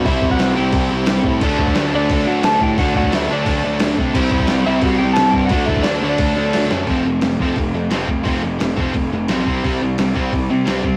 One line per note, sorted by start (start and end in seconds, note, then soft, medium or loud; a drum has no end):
0.05 0.21 C2 loud
0.05 0.56 C3 medium
0.05 0.56 G3 loud
0.05 0.56 C4 loud
0.05 0.55 E4 loud
0.05 0.31 E4 medium
0.05 0.31 E5 loud
0.05 kick loud
0.05 open hi-hat medium
0.22 0.39 C2 medium
0.22 kick loud
0.30 0.56 F#4 medium
0.30 0.56 F#5 loud
0.30 kick medium
0.39 0.56 C2 loud
0.39 snare loud
0.39 open hi-hat medium
0.56 0.72 C2 loud
0.56 1.41 C3 medium
0.56 1.41 G3 medium
0.56 1.41 C4 medium
0.56 1.41 E4 medium
0.56 1.22 G4 medium
0.56 1.21 G5 medium
0.72 0.90 C2 loud
0.72 kick loud
0.72 open hi-hat medium
0.91 1.07 C2 loud
1.06 1.23 C2 medium
1.06 snare loud
1.06 open hi-hat medium
1.24 1.41 A2 medium
1.24 kick medium
1.41 1.58 D2 medium
1.41 1.95 D3 loud
1.41 2.09 D3 medium
1.41 1.94 F#3 loud
1.41 1.94 A3 loud
1.41 2.11 A3 medium
1.41 1.93 D4 loud
1.41 kick loud
1.41 crash loud
1.46 2.13 D4 loud
1.58 1.75 D2 medium
1.58 kick medium
1.67 kick loud
1.75 1.92 D2 loud
1.75 snare loud
1.75 open hi-hat medium
1.93 2.09 D2 loud
1.93 2.78 D3 medium
1.93 2.78 F#3 medium
1.93 2.78 A3 medium
1.93 2.78 D4 medium
1.93 2.27 D4 medium
1.93 2.29 D5 medium
2.10 2.27 D2 loud
2.10 2.76 D3 medium
2.10 2.78 A3 medium
2.10 2.79 D4 medium
2.10 kick loud
2.10 open hi-hat medium
2.27 2.44 D2 medium
2.27 2.43 F#4 medium
2.27 2.45 F#5 medium
2.43 2.60 D2 medium
2.43 2.61 A4 medium
2.43 2.61 A5 loud
2.43 snare loud
2.43 open hi-hat medium
2.61 2.78 A2 medium
2.61 2.78 G4 medium
2.61 2.78 G5 medium
2.61 kick medium
2.77 2.94 D2 medium
2.77 3.45 D3 loud
2.77 3.29 D3 loud
2.77 3.29 F#3 loud
2.77 3.46 A3 loud
2.77 3.29 A3 loud
2.77 3.47 D4 medium
2.77 3.28 D4 loud
2.77 2.94 F#4 medium
2.77 2.96 F#5 medium
2.77 kick loud
2.77 open hi-hat medium
2.95 3.12 D2 loud
2.95 3.13 F#4 medium
2.95 3.15 F#5 loud
2.95 kick medium
3.03 kick medium
3.12 3.29 D2 medium
3.12 3.29 E4 medium
3.12 3.31 E5 medium
3.12 snare loud
3.12 open hi-hat medium
3.29 3.45 D2 medium
3.29 4.12 D3 medium
3.29 4.13 F#3 medium
3.29 4.14 A3 medium
3.29 4.14 D4 medium
3.29 3.95 D4 medium
3.29 3.96 D5 medium
3.46 3.63 D2 loud
3.46 4.14 D3 medium
3.46 4.15 A3 medium
3.46 4.15 D4 medium
3.46 kick loud
3.46 open hi-hat medium
3.64 3.81 D2 loud
3.80 3.97 D2 medium
3.80 snare loud
3.80 open hi-hat medium
3.98 4.14 C3 medium
3.98 kick medium
4.13 4.30 C2 medium
4.13 4.64 C3 loud
4.13 4.81 C3 loud
4.13 4.64 G3 medium
4.13 4.83 G3 loud
4.13 4.65 C4 loud
4.13 4.65 E4 loud
4.13 kick loud
4.13 crash loud
4.18 4.84 C4 loud
4.31 4.48 C2 loud
4.31 kick loud
4.40 kick medium
4.47 4.65 C2 loud
4.47 snare loud
4.47 open hi-hat medium
4.66 4.82 C2 loud
4.66 5.50 C3 medium
4.66 5.52 G3 medium
4.66 5.51 C4 medium
4.66 5.51 E4 medium
4.66 4.83 E4 medium
4.66 4.82 E5 medium
4.82 4.99 C2 loud
4.82 5.49 C3 medium
4.82 5.51 G3 medium
4.82 4.99 F#4 medium
4.82 4.98 F#5 loud
4.82 kick loud
4.82 open hi-hat medium
4.86 5.52 C4 medium
4.98 5.16 C2 loud
4.98 5.16 G4 medium
4.98 5.17 G5 loud
5.13 5.33 C2 medium
5.13 5.33 A5 loud
5.13 snare loud
5.13 open hi-hat medium
5.18 5.33 A4 medium
5.31 5.50 G2 medium
5.31 5.46 G5 loud
5.31 kick medium
5.35 5.51 G4 medium
5.46 6.18 D3 medium
5.46 5.66 F#5 loud
5.46 open hi-hat medium
5.50 5.67 D2 medium
5.50 6.01 D3 loud
5.50 6.02 F#3 loud
5.50 6.19 A3 loud
5.50 6.02 A3 medium
5.50 6.02 D4 loud
5.50 6.20 D4 loud
5.50 5.67 F#4 medium
5.50 kick loud
5.66 5.84 D2 medium
5.66 5.85 E5 loud
5.66 kick medium
5.70 5.85 E4 medium
5.76 kick medium
5.83 6.01 D2 medium
5.83 5.99 D5 medium
5.83 snare loud
5.83 open hi-hat medium
5.87 6.03 D4 medium
6.00 6.18 D2 medium
6.00 6.88 A3 medium
6.00 6.88 D4 medium
6.00 6.68 D4 medium
6.00 6.66 D5 medium
6.04 6.89 D3 medium
6.04 6.88 F#3 medium
6.18 6.36 D2 loud
6.18 6.87 D3 medium
6.18 6.88 A3 medium
6.18 kick loud
6.18 open hi-hat medium
6.24 6.89 D4 medium
6.37 6.53 D2 loud
6.53 6.71 D2 medium
6.53 snare medium
6.53 open hi-hat medium
6.71 6.87 F#2 medium
6.71 snare loud
6.86 7.02 F1 medium
6.86 7.03 F2 medium
6.86 7.43 F2 medium
6.86 7.03 C3 medium
6.86 7.40 C3 medium
6.86 7.05 F3 medium
6.86 7.05 A3 medium
6.86 7.06 C4 loud
6.86 kick loud
6.86 open hi-hat soft
6.91 7.39 F3 medium
7.04 7.20 F1 medium
7.04 7.20 F2 medium
7.04 7.21 C3 medium
7.04 7.22 F3 medium
7.04 7.22 A3 medium
7.21 7.37 F1 medium
7.21 7.38 F2 medium
7.21 7.38 C3 medium
7.21 7.39 F3 medium
7.21 7.39 A3 medium
7.21 snare loud
7.21 open hi-hat soft
7.39 7.54 F1 medium
7.39 7.55 F2 medium
7.39 7.89 F2 medium
7.39 7.56 C3 medium
7.39 7.92 C3 medium
7.39 7.91 F3 medium
7.39 7.57 F3 medium
7.39 7.57 A3 medium
7.39 7.58 C4 medium
7.39 kick medium
7.56 7.71 F1 medium
7.56 7.72 F2 medium
7.56 7.73 C3 medium
7.56 7.73 F3 medium
7.56 7.73 A3 medium
7.56 kick loud
7.56 open hi-hat soft
7.74 7.90 F2 medium
7.74 7.89 F2 medium
7.74 7.90 C3 medium
7.74 7.89 F3 medium
7.74 7.90 A3 medium
7.90 8.06 F1 medium
7.90 8.23 F2 medium
7.90 8.07 F2 medium
7.90 8.07 C3 medium
7.90 8.26 C3 medium
7.90 8.07 F3 medium
7.90 8.07 A3 loud
7.90 8.08 C4 loud
7.90 snare loud
7.90 open hi-hat medium
7.95 8.27 F3 medium
8.08 8.23 F1 medium
8.08 8.24 F2 medium
8.08 8.24 C3 medium
8.08 8.22 F3 medium
8.08 8.23 A3 medium
8.08 kick medium
8.23 8.40 F1 medium
8.23 8.76 F2 medium
8.23 8.42 F2 medium
8.23 8.77 C3 medium
8.23 8.43 C3 medium
8.23 8.41 F3 medium
8.23 8.41 A3 medium
8.23 8.41 C4 loud
8.23 kick loud
8.23 open hi-hat medium
8.29 8.76 F3 medium
8.42 8.58 F1 medium
8.42 8.59 F2 medium
8.42 8.59 C3 medium
8.42 8.58 F3 medium
8.42 8.58 A3 medium
8.59 8.75 F1 medium
8.59 8.77 F2 medium
8.59 8.77 C3 medium
8.59 8.75 F3 medium
8.59 8.75 A3 medium
8.59 snare loud
8.59 open hi-hat medium
8.76 8.92 F1 medium
8.76 8.94 F2 medium
8.76 8.95 C3 medium
8.76 9.30 C3 medium
8.76 8.91 F3 medium
8.76 9.28 F3 medium
8.76 8.92 A3 medium
8.76 8.93 C4 medium
8.76 kick medium
8.81 9.28 F2 medium
8.93 9.09 F1 medium
8.93 9.11 F2 medium
8.93 9.11 C3 medium
8.93 9.09 F3 medium
8.93 9.10 A3 medium
8.93 kick loud
8.93 open hi-hat medium
9.12 9.27 F1 medium
9.12 9.28 F2 medium
9.12 9.28 C3 medium
9.12 9.27 F3 medium
9.12 9.28 A3 medium
9.28 9.44 B1 medium
9.28 9.45 F2 medium
9.28 9.46 F2 medium
9.28 9.46 C3 medium
9.28 9.44 C3 medium
9.28 9.45 F3 loud
9.28 9.46 A3 medium
9.28 9.46 C4 loud
9.28 snare loud
9.28 open hi-hat medium
9.32 9.47 F3 medium
9.45 9.61 C2 medium
9.45 9.97 C3 medium
9.45 9.63 C3 medium
9.45 9.63 G3 medium
9.45 9.99 G3 medium
9.45 9.63 C4 medium
9.45 kick medium
9.49 10.01 C4 loud
9.64 9.78 C2 medium
9.64 9.81 C3 medium
9.64 9.81 G3 medium
9.64 9.81 C4 loud
9.64 kick loud
9.64 open hi-hat medium
9.82 9.96 C2 medium
9.82 9.97 C3 medium
9.82 9.97 G3 medium
9.98 10.13 C2 medium
9.98 10.49 C3 medium
9.98 10.13 C3 medium
9.98 10.13 G3 medium
9.98 10.50 G3 medium
9.98 10.48 C4 medium
9.98 snare loud
9.98 open hi-hat medium
10.15 10.30 C2 medium
10.15 10.31 C3 medium
10.15 10.31 G3 medium
10.15 10.32 C4 medium
10.15 kick medium
10.33 10.47 C2 medium
10.33 10.49 C3 medium
10.33 10.49 G3 medium
10.33 kick medium
10.33 open hi-hat soft
10.49 10.65 C3 medium
10.49 10.64 C3 medium
10.49 10.81 C3 medium
10.49 10.64 G3 medium
10.49 10.84 G3 medium
10.49 10.83 C4 medium
10.65 10.81 C2 medium
10.65 10.82 C3 medium
10.65 10.83 G3 loud
10.65 10.83 C4 loud
10.65 snare loud
10.65 open hi-hat medium
10.83 10.97 C2 medium
10.83 10.97 C3 medium
10.83 10.97 G3 medium
10.83 10.97 C4 medium
10.83 kick medium